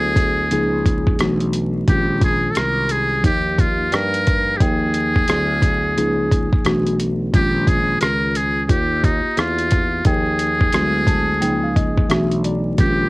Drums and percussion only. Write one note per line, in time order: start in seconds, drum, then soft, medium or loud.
0.16 kick medium
0.16 closed hi-hat medium
0.51 closed hi-hat medium
0.86 kick medium
0.86 closed hi-hat medium
1.07 kick medium
1.19 cross-stick medium
1.19 closed hi-hat medium
1.40 closed hi-hat soft
1.53 closed hi-hat medium
1.88 kick loud
1.88 closed hi-hat medium
2.21 kick medium
2.21 closed hi-hat medium
2.55 cross-stick loud
2.55 closed hi-hat medium
2.89 closed hi-hat medium
3.24 kick medium
3.24 closed hi-hat medium
3.58 kick medium
3.58 closed hi-hat medium
3.92 cross-stick medium
3.92 closed hi-hat medium
4.14 closed hi-hat soft
4.27 kick medium
4.27 closed hi-hat medium
4.60 kick loud
4.60 closed hi-hat medium
4.94 closed hi-hat medium
5.16 kick medium
5.28 cross-stick loud
5.28 closed hi-hat medium
5.62 kick medium
5.62 closed hi-hat medium
5.98 closed hi-hat medium
6.32 kick medium
6.32 closed hi-hat medium
6.53 kick medium
6.65 cross-stick loud
6.65 closed hi-hat medium
6.87 closed hi-hat soft
7.00 closed hi-hat medium
7.34 kick loud
7.34 closed hi-hat medium
7.67 kick medium
7.67 closed hi-hat medium
8.01 cross-stick loud
8.01 closed hi-hat medium
8.35 closed hi-hat medium
8.69 kick medium
8.69 closed hi-hat medium
9.04 kick medium
9.04 closed hi-hat medium
9.37 cross-stick medium
9.37 closed hi-hat medium
9.59 closed hi-hat soft
9.71 kick medium
9.71 closed hi-hat medium
10.05 kick loud
10.05 closed hi-hat medium
10.39 closed hi-hat medium
10.61 kick medium
10.72 cross-stick medium
10.72 closed hi-hat medium
11.07 kick medium
11.07 closed hi-hat medium
11.42 closed hi-hat medium
11.76 kick medium
11.76 closed hi-hat medium
11.98 kick medium
12.10 cross-stick loud
12.10 closed hi-hat medium
12.31 closed hi-hat soft
12.44 closed hi-hat medium
12.78 kick loud
12.78 closed hi-hat medium